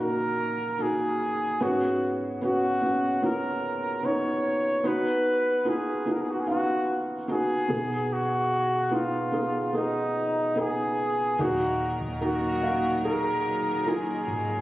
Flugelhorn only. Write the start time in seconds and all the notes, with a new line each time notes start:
0.00 A#4
0.82 G#4
1.63 F#4
2.44 F#4
3.24 A#4
4.05 C#5
4.87 B4
5.69 G#4
6.12 A#4
6.22 G#4
6.31 F#4
6.40 G#4
6.50 F#4
7.31 G#4
8.13 F#4
8.94 F4
9.76 D#4
10.60 G#4
11.42 F#4
12.25 F#4
13.07 A#4
13.89 G#4